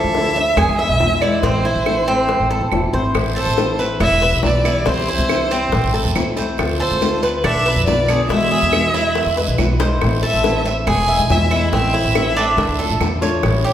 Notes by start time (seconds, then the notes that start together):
Already playing: D3 F3 A3 D4 E4 A4 E5
0.04 D2
0.14 D3 F3 A3 D4 E4, high bongo
0.36 A3 D4 E4 E5
0.57 E2 G#4 G#5, muted nylon-string guitar stroke, high bongo, claves
0.68 E2
0.79 G#3 B3 E4 E5, high bongo
0.89 B1
1.00 E2 E3 G#3 B3 E4, high bongo, low bongo
1.21 E3 G#3 B3 E4 D5, high bongo, claves
1.42 A1 E3 A3 C4 E4 C5, high bongo
1.65 E4, high bongo
1.75 A1
1.86 E3 A3 C4 E4, high bongo, claves
2.08 A3 C4 E4
2.29 muted nylon-string guitar stroke, high bongo
2.39 A1
2.51 A3 C4 E4 A4, high bongo
2.61 E2
2.72 E1 E3 A3 C4 E4, high bongo, low bongo, claves
2.93 G#1 A3 C4 E4 C5, high bongo
3.14 A1 E3 A3 C4 E4, high bongo, long guiro, claves
3.36 A4 C5, high bongo
3.46 A1
3.57 E3 A3 C4 E4, high bongo, short guiro
3.79 A3 C4 E4 B4, short guiro
4.00 E1 E4 E5, muted nylon-string guitar stroke, high bongo, long guiro, claves
4.11 E1
4.21 G3 B3 E4 B4, high bongo
4.32 B1
4.42 B1 E3 G3 B3 E4 D5, high bongo, low bongo, short guiro
4.64 E3 G3 B3 E4, high bongo, short guiro, claves
4.85 C2 C3 E3 G3 C4 E4 C5, high bongo, long guiro
5.08 E4, high bongo
5.18 C2
5.29 C3 E3 G3 C4 E4, high bongo, short guiro, claves
5.50 G3 C4 E4, short guiro
5.71 A1, muted nylon-string guitar stroke, high bongo, long guiro
5.84 A1
5.93 A3 C4 E4 A4, high bongo
6.05 E2
6.15 C2 E3 A3 C4 E4, high bongo, low bongo, short guiro, claves
6.36 A3 C4 E4 C5, high bongo, short guiro
6.58 D2 D3 A3 C4 F4, high bongo, long guiro, claves
6.80 A4 C5, high bongo
6.91 D2
7.01 D3 A3 C4 F4, high bongo, short guiro
7.22 A3 C4 F4 B4, short guiro
7.44 B1 D4 E5, muted nylon-string guitar stroke, high bongo, long guiro, claves
7.55 B1
7.66 B3 D4 F4 B4, high bongo
7.76 F2
7.87 B1 D3 B3 D4 F4 D5, high bongo, low bongo, short guiro
8.08 D3 B3 D4 F4 G#4, high bongo, short guiro, claves
8.29 E2 B2 E3 G#3 B3 E4 E5, high bongo, long guiro
8.51 G#4, high bongo
8.62 E2
8.73 B2 E3 G#3 B3 E4, high bongo, short guiro, claves
8.94 G#3 B3 E4, short guiro
9.15 muted nylon-string guitar stroke, high bongo, long guiro
9.26 E2
9.37 G#3 B3 E4 B4, high bongo
9.48 B1
9.58 B1 E3 G#3 B3 E4, high bongo, low bongo, short guiro, claves
9.80 E3 G#3 B3 E4 C5, high bongo, short guiro
10.01 A1 E3 A3 C4 E4, high bongo, long guiro, claves
10.23 A4 E5, high bongo
10.33 A1
10.44 E3 A3 C4 E4, high bongo, short guiro
10.65 A3 C4 E4 E5, short guiro
10.87 E1 G#4 G#5, muted nylon-string guitar stroke, high bongo, long guiro, claves
10.97 E1
11.08 G#3 B3 E4 E5, high bongo
11.19 B1
11.30 E2 E3 G#3 B3 E4 E5, high bongo, low bongo, short guiro
11.51 E3 G#3 B3 E4, high bongo, short guiro, claves
11.72 A1 E3 A3 C4 E4 E5, high bongo, long guiro
11.94 E4, high bongo
12.04 A1
12.15 E3 A3 C4 E4, high bongo, short guiro, claves
12.36 A3 C4 D4 E4, short guiro
12.57 D2, muted nylon-string guitar stroke, high bongo, long guiro
12.68 D2
12.79 A3 D4 F4 A4, high bongo
12.90 A1
13.00 E2 D3 A3 D4 F4, high bongo, low bongo, short guiro, claves
13.21 A3 D4 F4 C#5, high bongo, short guiro
13.43 A1 E3 G3 C#4 E4, high bongo, long guiro, claves
13.64 G4 C#5, high bongo